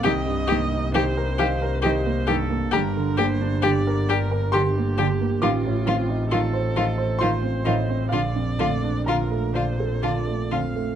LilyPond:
<<
  \new Staff \with { instrumentName = "Viola" } { \time 3/4 \key g \minor \tempo 4 = 66 ees''4 c''4 c''8 a'8 | bes'8 c''8 d''8 bes'8 g'4 | f'4 a'4 c''4 | d''4 bes'8 c''8 d''8 f''8 | }
  \new Staff \with { instrumentName = "Violin" } { \time 3/4 \key g \minor g'8 g'8 g'8 g'8 g'8 g'8 | g'8 g'8 g'8 g'8 g'8 g'8 | f'8 f'8 f'8 f'8 f'8 f'8 | f'8 f'8 f'8 f'8 f'8 f'8 | }
  \new Staff \with { instrumentName = "Grand piano" } { \time 3/4 \key g \minor << { g''4. f''8 ees''8 r8 | bes''2 c'''4 | d'''2 c'''8 ees''8 | f''4 bes''4 a''4 | } \\ { c,16 g,16 bes16 ees'16 g'16 bes'16 ees''16 bes'16 g'16 bes16 g,16 bes16 | g,16 d16 bes16 d'16 g'16 bes'16 d''16 bes'16 g'16 bes16 d16 bes16 | a,,16 a,16 c'16 ees'16 f'16 c''16 ees''16 c''16 f'16 c'16 a,16 c'16 | bes,,16 f,16 a16 d'16 f'16 a16 d''16 a'16 f'16 a16 f,16 a16 | } >> }
  \new Staff \with { instrumentName = "Cello" } { \clef bass \time 3/4 \key g \minor ees8 ees8 ees8 ees8 ees8 ees8 | d8 d8 d8 d8 d8 d8 | ees8 ees8 ees8 ees8 ees8 ees8 | d8 d8 d8 d8 d8 d8 | }
  \new Staff \with { instrumentName = "Double bass" } { \clef bass \time 3/4 \key g \minor c,2. | g,,2. | a,,2. | bes,,2. | }
>>